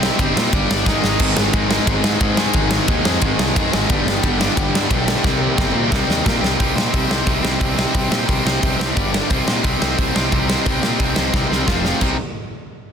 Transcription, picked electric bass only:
0.19 0.31 G1 medium
0.36 0.48 A#2 medium
0.53 0.65 G1 medium
0.70 0.82 G1 medium
0.86 0.98 G#1 medium
1.03 1.15 G#1 loud
1.20 1.32 G#1 loud
1.37 1.49 G#1 medium
1.53 1.78 G#1 medium
1.87 1.99 G#1 medium
2.04 2.16 G#2 medium
2.21 2.45 G#2 medium
2.55 2.79 G#1 loud
2.89 3.01 D#2 loud
3.05 3.17 F2 loud
3.22 3.34 G#1 loud
3.38 3.51 C2 medium
3.56 3.68 F2 loud
3.73 3.85 G#1 loud
3.90 4.02 G1 loud
4.05 4.18 G1 loud
4.23 4.48 G1 loud
4.57 4.69 G1 loud
4.73 4.86 G2 medium
4.91 5.15 B1 medium
5.24 5.49 C2 loud
5.58 5.70 G1 loud
5.75 5.87 A#2 medium
5.92 6.04 C2 loud
6.08 6.21 D#2 loud
6.26 6.38 A#2 medium
6.42 6.54 C2 medium
6.60 6.72 C2 medium
6.75 6.88 A#2 medium
6.94 7.05 C2 medium
7.09 7.21 C2 medium
7.27 7.39 C2 medium
7.44 7.56 C2 medium
7.61 7.85 C2 medium
7.95 8.06 C2 loud
8.11 8.23 A#2 medium
8.29 8.40 C2 medium
8.45 8.57 C2 medium
8.63 8.75 C2 medium
8.80 8.91 C2 medium
8.97 9.20 G1 medium
9.30 9.42 C2 loud
9.48 9.60 A#2 medium
9.64 9.76 C2 medium
9.81 9.93 C2 medium
9.98 10.10 C2 medium
10.16 10.27 C2 medium
10.33 10.56 C2 medium
10.66 10.78 C2 loud
10.82 10.94 A#2 medium
11.00 11.12 C2 medium
11.17 11.29 C2 medium
11.33 11.45 C2 medium
11.51 11.63 C2 medium
11.68 11.91 F1 medium
12.02 12.17 C2 medium

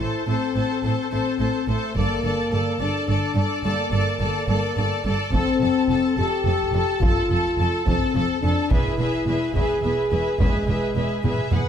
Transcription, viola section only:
0.01 0.27 A4 soft
0.28 0.55 A4 soft
0.57 0.83 A4 soft
0.84 1.12 A4 soft
1.13 1.40 A4 soft
1.41 1.67 A4 soft
1.69 1.95 A4 soft
1.96 2.23 A4 soft
2.24 2.52 A4 soft
2.53 2.80 A4 soft
2.81 3.08 A4 soft
3.09 3.35 A4 soft
3.36 3.64 A4 soft
3.65 3.91 A4 soft
3.92 4.20 A4 soft
4.21 4.48 A4 soft
4.49 4.76 A4 soft
4.77 5.05 A4 soft
5.06 5.33 A4 soft
5.34 5.60 A4 soft
5.61 5.89 A4 medium
5.90 6.18 A4 soft
6.19 6.46 A4 soft
6.47 6.74 A4 soft
6.75 7.01 A4 soft
7.03 7.30 A4 medium
7.31 7.58 A4 soft
7.59 7.87 A4 soft
7.88 8.14 A4 soft
8.15 8.42 A4 soft
8.43 8.71 A4 soft
8.72 8.98 G#4 soft
9.00 9.27 G#4 soft
9.28 9.54 G#4 soft
9.56 9.82 G#4 soft
9.83 10.11 G#4 soft
10.12 10.39 G#4 soft
10.40 10.67 G#4 soft
10.68 10.95 G#4 soft
10.96 11.23 G#4 soft
11.24 11.50 G#4 soft
11.52 11.69 G#4 soft

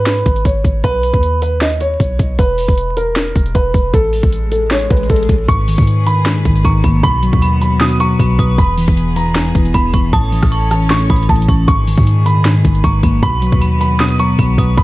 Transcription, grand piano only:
0.00 0.42 B4 medium
0.45 0.82 C#5 medium
0.84 1.39 B4 loud
1.42 1.57 B4 medium
1.61 1.76 D#5 medium
1.81 2.35 C#5 medium
2.39 2.93 B4 medium
2.97 3.51 A#4 medium
3.55 3.91 B4 medium
3.94 4.48 A4 medium
4.52 4.67 A4 medium
4.71 4.86 C#5 loud
4.90 5.05 B4 medium
5.10 5.46 A4 medium
5.49 6.03 C#6 loud
6.07 6.61 B5 medium
6.65 7.01 C#6 medium
7.03 7.58 B5 loud
7.61 7.76 B5 medium
7.81 7.96 D#6 medium
8.00 8.55 C#6 loud
8.58 9.13 B5 medium
9.16 9.71 A#5 medium
9.74 10.11 B5 medium
10.13 10.68 A5 loud
10.71 10.86 A5 medium
10.90 11.05 C#6 loud
11.10 11.25 B5 medium
11.29 11.66 A5 medium
11.68 12.22 C#6 loud
12.26 12.80 B5 loud
12.84 13.20 C#6 medium
13.23 13.77 B5 loud
13.81 13.96 B5 medium
14.00 14.15 D#6 medium
14.20 14.74 C#6 medium
14.77 14.83 B5 medium

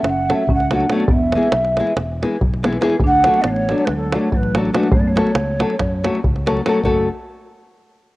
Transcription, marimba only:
0.04 0.29 C#4 medium
0.30 0.49 C#4 medium
0.50 0.70 C#4 loud
0.74 0.90 D4 medium
0.92 1.10 B3 medium
1.11 1.99 B3 medium
3.04 3.35 D4 loud
3.37 3.46 B3 medium
3.47 3.81 A3 medium
3.81 3.90 G#3 medium
3.91 4.13 F#3 medium
4.15 4.34 A3 medium
4.34 4.55 F#3 medium
4.56 4.74 F#3 medium
4.76 4.94 G#3 medium
4.92 5.00 A3 medium
5.00 5.08 B3 medium
5.07 6.47 A3 medium
6.85 7.08 F#4 medium

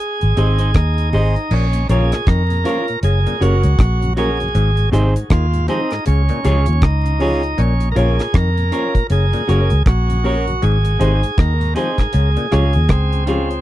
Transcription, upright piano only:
0.37 0.59 G#4 medium
0.37 0.60 C5 medium
0.37 0.60 D#5 loud
1.13 1.35 G#4 medium
1.13 1.36 C5 medium
1.13 1.36 D#5 loud
1.89 2.11 F4 loud
1.89 2.11 A#4 medium
1.89 2.12 C#5 loud
2.65 2.87 F4 medium
2.65 2.87 A#4 medium
2.65 2.88 C#5 loud
3.41 3.63 F#4 medium
3.41 3.63 A#4 medium
3.41 3.64 C#5 loud
4.17 4.39 F#4 medium
4.17 4.39 A#4 medium
4.17 4.39 C#5 loud
4.92 5.15 D#4 medium
4.92 5.15 G#4 medium
4.92 5.15 C5 loud
5.68 5.91 D#4 medium
5.68 5.91 G#4 medium
5.68 5.91 C5 medium
6.44 6.66 F4 medium
6.44 6.67 G#4 medium
6.44 6.67 C#5 loud
7.20 7.42 F4 medium
7.20 7.42 G#4 medium
7.20 7.43 C#5 loud
7.96 8.18 F4 loud
7.96 8.18 A#4 medium
7.96 8.19 C#5 loud
8.72 8.94 F4 medium
8.72 8.94 A#4 medium
8.72 8.95 C#5 loud
9.48 9.70 F#4 medium
9.48 9.70 A#4 medium
9.48 9.71 C#5 loud
10.24 10.46 F#4 medium
10.24 10.46 A#4 medium
10.24 10.47 C#5 loud
11.00 11.22 D#4 loud
11.00 11.22 G#4 loud
11.00 11.22 C5 loud
11.75 11.98 D#4 medium
11.75 11.98 G#4 medium
11.75 11.98 C5 loud
12.52 12.74 F4 medium
12.52 12.74 G#4 medium
12.52 12.74 C#5 loud
13.28 13.50 F4 medium
13.28 13.50 G#4 medium
13.28 13.50 C#5 loud

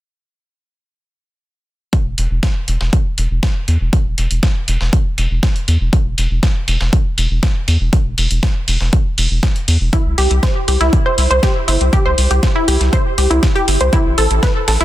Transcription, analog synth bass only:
2.06 2.15 E1 medium
2.18 2.27 E1 medium
2.31 2.40 E1 medium
2.68 2.77 E1 medium
2.81 2.90 E1 medium
3.18 3.27 E1 medium
3.31 3.40 E1 medium
3.68 3.77 E2 loud
3.81 3.90 E1 medium
4.06 4.15 E1 medium
4.18 4.27 E1 medium
4.31 4.40 E1 medium
4.68 4.77 E1 medium
4.81 4.90 E1 medium
5.18 5.27 E1 loud
5.31 5.40 E1 medium
5.68 5.77 E2 medium
5.81 5.90 E1 medium
6.06 6.15 E1 medium
6.18 6.27 E1 medium
6.31 6.40 E1 medium
6.68 6.77 E1 loud
6.81 6.90 E1 medium
7.18 7.27 E1 loud
7.31 7.40 E1 medium
7.68 7.77 E2 medium
7.81 7.90 E1 medium
8.06 8.15 E1 medium
8.18 8.27 E1 medium
8.31 8.40 E1 medium
8.68 8.77 E1 medium
8.81 8.90 E1 medium
9.18 9.27 E1 loud
9.31 9.40 E1 medium
9.68 9.77 E2 medium
9.81 9.90 E1 medium
10.06 10.15 C2 medium
10.18 10.27 C2 medium
10.31 10.40 C2 medium
10.68 10.77 C2 medium
10.81 10.90 C2 medium
11.18 11.27 C2 loud
11.31 11.40 C2 medium
11.68 11.77 G1 medium
11.81 11.90 C2 medium
12.06 12.15 C2 medium
12.18 12.27 C2 medium
12.31 12.40 C2 medium
12.68 12.77 C2 loud
12.80 12.90 C2 medium
13.18 13.27 C2 medium
13.31 13.40 C2 medium
13.68 13.77 G1 loud
13.81 13.90 C2 medium
14.06 14.15 A1 medium
14.18 14.27 A1 medium
14.31 14.40 A1 medium
14.68 14.77 A1 loud
14.80 14.85 A1 medium

